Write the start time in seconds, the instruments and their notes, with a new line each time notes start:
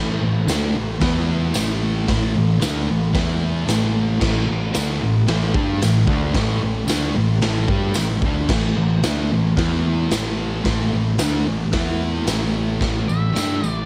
Already playing: picked electric bass A1, distorted electric guitar A2 E3 A3
0.21 picked electric bass A1, distorted electric guitar A2 E3
0.46 picked electric bass D2, distorted electric guitar D3 A3 D4, snare, open hi-hat, tambourine
0.74 picked electric bass A1, distorted electric guitar A2 E3
1.00 picked electric bass E2, distorted electric guitar E3 B3 E4, kick, snare, open hi-hat
1.54 picked electric bass A1, distorted electric guitar A2 E3 A3, snare, open hi-hat, tambourine
2.07 picked electric bass A1, distorted electric guitar A2 E3 A3, kick, snare, open hi-hat
2.35 picked electric bass A1, distorted electric guitar A2 E3
2.59 distorted electric guitar D3 A3 D4, snare, open hi-hat, tambourine
2.64 picked electric bass D2
2.88 picked electric bass A1, distorted electric guitar A2 E3
3.13 picked electric bass E2, distorted electric guitar E3 B3 E4, kick, snare, open hi-hat
3.66 picked electric bass A1, distorted electric guitar A2 E3 A3, snare, open hi-hat, tambourine
4.20 picked electric bass A1, distorted electric guitar A2 E3 A3, kick, snare, crash
4.48 picked electric bass A1, distorted electric guitar A2 E3
4.73 picked electric bass D2, distorted electric guitar D3 A3 D4, snare, open hi-hat, tambourine
5.01 picked electric bass A1, distorted electric guitar A2 E3
5.27 picked electric bass A1, distorted electric guitar A2 E3 A3, snare, open hi-hat
5.54 picked electric bass G2, distorted electric guitar G3 D4 G4, kick
5.81 picked electric bass A1, distorted electric guitar A2 E3, snare, open hi-hat, tambourine
6.07 picked electric bass D2, distorted electric guitar D3 A3 D4, kick
6.34 picked electric bass A1, distorted electric guitar A2 E3 A3, kick, snare, open hi-hat
6.61 picked electric bass A1, distorted electric guitar A2 E3
6.86 picked electric bass D2, distorted electric guitar D3 A3 D4, snare, open hi-hat, tambourine
7.14 picked electric bass A1, distorted electric guitar A2 E3
7.41 picked electric bass A1, distorted electric guitar A2 E3 A3, snare, open hi-hat
7.68 picked electric bass G2, distorted electric guitar G3 D4 G4, kick
7.94 picked electric bass A1, distorted electric guitar A2 E3, snare, open hi-hat, tambourine
8.22 picked electric bass D2, distorted electric guitar D3 A3, kick
8.26 distorted electric guitar D4
8.49 picked electric bass A1, distorted electric guitar A2 E3 A3, kick, snare, crash
8.76 picked electric bass A1, distorted electric guitar A2 E3
9.03 picked electric bass D2, distorted electric guitar D3 A3 D4, snare, open hi-hat, tambourine
9.31 picked electric bass A1, distorted electric guitar A2 E3
9.56 picked electric bass E2, distorted electric guitar E3 B3 E4, kick, snare, open hi-hat
10.11 picked electric bass A1, distorted electric guitar A2 E3 A3, snare, open hi-hat, tambourine
10.64 picked electric bass A1, distorted electric guitar A2 E3 A3, kick, snare, open hi-hat
10.93 picked electric bass A1, distorted electric guitar A2 E3
11.18 picked electric bass D2, distorted electric guitar D3 A3 D4, snare, open hi-hat, tambourine
11.46 picked electric bass A1, distorted electric guitar A2 E3
11.72 picked electric bass E2, distorted electric guitar E3 B3 E4, kick, snare, open hi-hat
12.26 picked electric bass A1, distorted electric guitar A2 E3 A3, snare, open hi-hat, tambourine
12.79 picked electric bass A1, distorted electric guitar A2 E3 A3, kick, snare, open hi-hat
13.07 picked electric bass A1, distorted electric guitar A2 E3, lead electric guitar E5, tambourine
13.33 distorted electric guitar G3 D4 G4, snare, open hi-hat, tambourine
13.37 picked electric bass G2
13.61 picked electric bass A1, distorted electric guitar A2 E3, tambourine
13.68 lead electric guitar D5